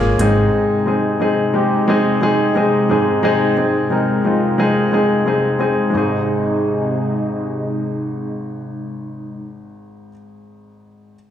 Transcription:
Already playing: analog synth bass G#1, analog synth pad A#2 G#3 C#4, grand piano A#3 C#4 F4 G#4 A#4
0.19 analog synth bass G#1, grand piano G#2 G#3 C4 D#4 G#4, analog synth pad C3 G#3 D#4, closed hi-hat
0.86 grand piano G#3 C4 D#4 G#4
1.20 grand piano G#3 C4 D#4 G#4
1.54 grand piano G#3 C4 D#4 G4
1.88 grand piano G#3 C4 D#4 G#4
2.21 grand piano G#3 C4 D#4 G#4
2.55 grand piano G#3 C4 D#4 G#4
2.89 grand piano G#2 G#3 C4 D#4 G#4
3.23 grand piano G#3 C4 D#4 G#4
3.57 grand piano G#3 C4 D#4 G#4
3.90 grand piano G#3 C4 D#4 A#4
4.24 grand piano G#3 C4 D#4 F4
4.58 grand piano G#3 C4 D#4 G#4
4.92 grand piano G#3 C4 D#4 G#4
5.26 grand piano G#3 C4 D#4 G#4
5.58 grand piano G#3 C4 D#4 G#4
5.90 grand piano G#1 G#3 C4, analog synth pad C3 G#3 D#4
5.95 grand piano D#4 G#4

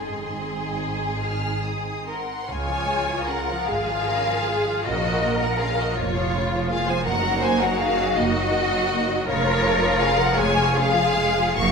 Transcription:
Already playing: double bass section G#1, cello section G#2, viola section C4 D#4, violin section G#4 C6
1.23 violin section F6
1.64 violin section D#6
2.07 violin section A#4 F#5 C6
2.47 double bass section C#2, viola section C#3 F4, cello section F4, violin section C#5 G#5
2.68 viola section F3
2.88 viola section G#3
3.08 viola section F3
3.26 viola section C#3, violin section A#4 F#5
3.49 viola section F3
3.65 double bass section G#1, viola section G#3, violin section G#4 F5, cello section G#4
3.88 viola section F3
4.06 viola section C#3, cello section A#4
4.29 viola section F3
4.46 viola section G#3, cello section G#4
4.67 viola section F3
4.83 double bass section A#1, viola section C#3, violin section F#4 D#5, cello section A#4
5.05 viola section F3
5.23 viola section A#3
5.39 viola section F3, violin section A#4 F#5
5.58 viola section C#3, violin section G#4 F5
5.78 viola section F3, violin section F#4 D#5
5.93 violin section F4, cello section F4
5.97 double bass section F1, viola section A#3, violin section C#5
6.16 viola section F3
6.35 viola section C#3
6.53 viola section F3
6.68 viola section A#3, violin section G#4 F5
6.87 viola section F3, violin section C5 G#5
7.04 double bass section F#1, viola section D#3 D#4, cello section F#4, violin section A#4 F#5
7.23 viola section F#3
7.41 viola section A#3, violin section C5 G#5
7.59 viola section F#3, violin section A#4 F#5
7.77 viola section D#3, violin section G#4 F5
7.97 viola section F#3
8.15 double bass section F#1, viola section A#3, violin section F#4 D#5
8.34 viola section F#3
8.52 viola section D#3
8.71 viola section F#3
8.90 viola section A#3
9.09 viola section F#3
9.27 double bass section F1, viola section C#3 F4, violin section F4 C#5, cello section A#4
9.45 viola section F3
9.63 viola section G#3
9.81 viola section F3
9.99 viola section C#3, violin section G#4 F5
10.17 viola section F3, violin section A#4 F#5
10.36 double bass section F1, viola section G#3, cello section G#4, violin section C#5 G#5
10.56 viola section F3
10.75 viola section C#3, violin section G#4 F5
10.96 viola section F3
11.17 viola section G#3
11.37 viola section F3
11.55 double bass section F#1, viola section D#3 D#4, cello section F#4, violin section F5 C#6

